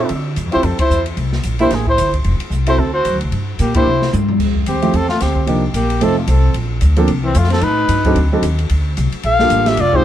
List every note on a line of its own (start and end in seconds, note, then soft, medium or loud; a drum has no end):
0.09 0.36 D3 medium
0.09 ride medium
0.36 0.46 G2 medium
0.36 hi-hat pedal soft
0.36 ride medium
0.46 0.54 F2 medium
0.51 0.63 D2 medium
0.51 0.62 C4 medium
0.51 0.62 E4 medium
0.51 0.67 E4 medium
0.51 0.62 F4 medium
0.51 0.62 G4 medium
0.51 0.66 C5 medium
0.51 ride soft
0.63 0.78 F2 medium
0.63 0.80 C4 medium
0.63 0.79 A4 medium
0.63 ride medium
0.79 1.05 E4 medium
0.79 1.04 C5 medium
0.79 muted upright bass stroke soft
0.79 kick medium
0.79 ride medium
0.90 1.16 E2 medium
0.90 hi-hat pedal medium
1.06 ride soft
1.17 1.43 C2 medium
1.17 ride medium
1.33 snare soft
1.43 1.70 A#1 medium
1.43 hi-hat pedal medium
1.43 ride medium
1.59 1.70 A#3 medium
1.59 1.70 D4 medium
1.59 1.70 E4 medium
1.59 1.74 E4 medium
1.59 1.70 G4 medium
1.59 1.76 C5 medium
1.59 ride soft
1.71 1.97 A1 medium
1.71 1.87 A#3 medium
1.71 1.88 G#4 medium
1.71 snare soft
1.71 ride medium
1.87 2.12 E4 medium
1.87 2.13 C5 medium
1.87 kick medium
1.98 2.24 G1 medium
1.98 hi-hat pedal medium
1.98 ride medium
2.14 kick soft
2.14 ride soft
2.24 2.39 F1 medium
2.24 ride medium
2.40 muted upright bass stroke soft
2.40 ride medium
2.50 2.77 C2 medium
2.50 hi-hat pedal medium
2.67 2.77 C4 medium
2.67 2.82 E4 medium
2.67 2.77 E4 medium
2.67 2.77 F#4 medium
2.67 2.78 A4 medium
2.67 2.81 C5 medium
2.67 ride medium
2.77 3.04 D2 medium
2.77 2.93 C4 medium
2.77 2.93 A4 medium
2.93 3.19 F#4 medium
2.93 3.19 C5 medium
3.05 3.14 F#2 medium
3.05 hi-hat pedal medium
3.05 ride medium
3.14 3.22 D2 medium
3.21 3.31 C2 medium
3.21 ride soft
3.32 3.58 G2 medium
3.32 ride medium
3.59 3.85 A#2 medium
3.59 3.74 A#3 medium
3.59 3.75 G4 medium
3.59 hi-hat pedal soft
3.59 ride medium
3.74 3.85 A#3 medium
3.74 3.85 D4 medium
3.74 3.85 E4 medium
3.74 4.11 E4 medium
3.74 3.85 G4 medium
3.74 4.11 C5 medium
3.74 kick medium
3.74 ride medium
3.87 4.12 C3 medium
4.02 snare soft
4.13 4.39 G2 medium
4.13 hi-hat pedal medium
4.13 high tom medium
4.28 floor tom medium
4.40 4.66 F2 medium
4.40 kick medium
4.40 crash medium
4.55 kick medium
4.66 4.93 D#2 medium
4.66 4.95 C4 medium
4.66 4.97 G4 medium
4.66 hi-hat pedal soft
4.66 ride medium
4.82 4.92 F3 medium
4.82 4.92 A3 medium
4.82 4.92 C4 medium
4.82 4.92 E4 medium
4.82 4.93 G4 medium
4.82 ride soft
4.94 5.20 E2 medium
4.94 5.10 C4 medium
4.94 5.08 A4 loud
4.94 ride medium
5.09 5.22 A3 medium
5.09 5.23 F4 medium
5.09 snare soft
5.20 5.46 D2 medium
5.20 5.47 C4 medium
5.20 5.48 G4 medium
5.20 snare soft
5.20 hi-hat pedal medium
5.20 ride medium
5.36 kick medium
5.47 5.73 C2 medium
5.47 5.61 F3 medium
5.47 5.61 A#3 medium
5.47 5.61 D4 medium
5.47 5.61 D#4 medium
5.47 5.62 G4 medium
5.47 ride medium
5.74 6.00 A#1 medium
5.74 6.05 A#3 medium
5.74 6.04 G4 medium
5.74 hi-hat pedal medium
5.74 ride medium
5.90 ride soft
6.01 6.27 F1 medium
6.01 6.15 F3 medium
6.01 6.15 A3 medium
6.01 6.15 C4 medium
6.01 6.17 C4 medium
6.01 6.15 D#4 medium
6.01 6.15 A4 medium
6.01 6.17 A4 loud
6.01 ride medium
6.18 6.30 A3 soft
6.18 6.31 F4 soft
6.27 6.54 C2 medium
6.27 6.55 C4 medium
6.27 6.56 A4 medium
6.27 hi-hat pedal medium
6.27 ride medium
6.54 6.80 A#1 medium
6.54 ride medium
6.81 7.07 D2 medium
6.81 hi-hat pedal medium
6.81 ride medium
6.96 7.07 F3 medium
6.96 7.07 A#3 medium
6.96 7.08 C4 medium
6.96 7.07 D4 medium
6.96 7.08 A4 medium
6.96 ride soft
7.08 7.34 C2 medium
7.08 ride medium
7.23 7.37 E3 medium
7.23 7.39 C4 medium
7.35 7.61 F2 medium
7.35 7.50 A3 medium
7.35 7.52 F4 medium
7.35 hi-hat pedal medium
7.35 ride medium
7.44 snare soft
7.50 7.63 C4 medium
7.50 7.65 A4 medium
7.50 snare soft
7.50 ride soft
7.61 7.88 A2 medium
7.61 8.16 D#4 medium
7.61 8.17 B4 medium
7.61 ride medium
7.89 8.15 G2 medium
7.89 hi-hat pedal soft
7.89 ride medium
8.04 8.15 F#3 medium
8.04 8.15 C4 medium
8.04 8.15 D4 medium
8.04 8.15 D#4 medium
8.04 8.16 A4 medium
8.04 kick medium
8.04 ride soft
8.15 8.42 D2 medium
8.15 ride medium
8.32 8.42 F#3 medium
8.32 8.42 C4 medium
8.32 8.42 D4 medium
8.32 8.42 D#4 medium
8.32 8.43 A4 medium
8.43 8.69 D#2 medium
8.43 hi-hat pedal medium
8.43 ride medium
8.59 ride soft
8.69 8.96 D2 medium
8.69 ride medium
8.97 9.12 C2 loud
8.97 hi-hat pedal soft
8.97 ride medium
9.12 muted upright bass stroke soft
9.12 ride soft
9.23 9.49 A#1 medium
9.23 9.68 A4 medium
9.23 9.69 F5 loud
9.23 ride medium
9.39 9.75 G3 medium
9.39 9.75 A#3 medium
9.39 9.75 D4 medium
9.39 9.76 F4 medium
9.39 9.76 A4 medium
9.39 snare medium
9.50 9.76 A1 medium
9.50 hi-hat pedal medium
9.50 ride medium
9.66 9.81 G4 medium
9.66 9.82 E5 medium
9.66 snare medium
9.66 ride soft
9.77 10.04 F1 medium
9.77 9.97 F4 medium
9.77 9.97 D5 medium
9.77 ride medium
9.92 10.03 G#3 medium
9.92 10.03 C4 medium
9.92 10.03 D#4 medium
9.92 10.04 D#4 medium
9.92 10.03 F4 medium
9.92 10.03 G4 medium
9.92 10.04 C5 loud
9.92 kick medium